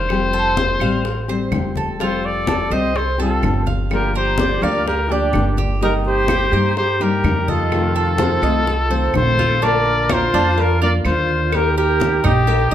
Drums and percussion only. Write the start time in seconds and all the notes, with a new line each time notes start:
0.09 high bongo, high conga, claves
0.33 high conga
0.57 high bongo, high conga
0.80 high bongo, high conga, claves
1.05 high bongo, high conga
1.29 high bongo, high conga
1.52 high bongo, low bongo, high conga, claves
1.76 high bongo, high conga
2.00 high bongo, high conga
2.24 high conga
2.47 high bongo, high conga, claves
2.72 high bongo, high conga
2.95 high bongo, high conga
3.19 high bongo, high conga
3.43 high bongo, low bongo, high conga, claves
3.66 high bongo, high conga
3.90 high bongo, high conga, claves
4.14 high conga
4.38 high bongo, high conga
4.62 high bongo, high conga, claves
4.86 high bongo, high conga
5.09 high bongo, high conga
5.33 high bongo, low bongo, high conga, claves
5.57 high bongo, high conga
5.81 high bongo, high conga
6.05 high conga
6.28 high bongo, high conga, claves
6.53 high bongo, high conga
6.76 high bongo, high conga
7.00 high bongo, high conga
7.24 high bongo, low bongo, high conga, claves
7.48 high bongo, high conga
7.71 high bongo, high conga, claves
7.95 high conga
8.18 high bongo, high conga
8.43 high bongo, high conga, claves
8.67 high bongo, high conga
8.91 high bongo, high conga
9.14 high bongo, low bongo, high conga, claves
9.38 high bongo, high conga
9.61 cowbell, high conga
9.85 high conga
10.09 cowbell, high conga, claves
10.34 cowbell
10.58 cowbell, high conga
10.82 high conga
11.05 cowbell, high conga, claves
11.29 high conga
11.52 cowbell, high conga, claves
12.00 cowbell, high conga
12.25 high conga, low conga, claves
12.48 cowbell, high conga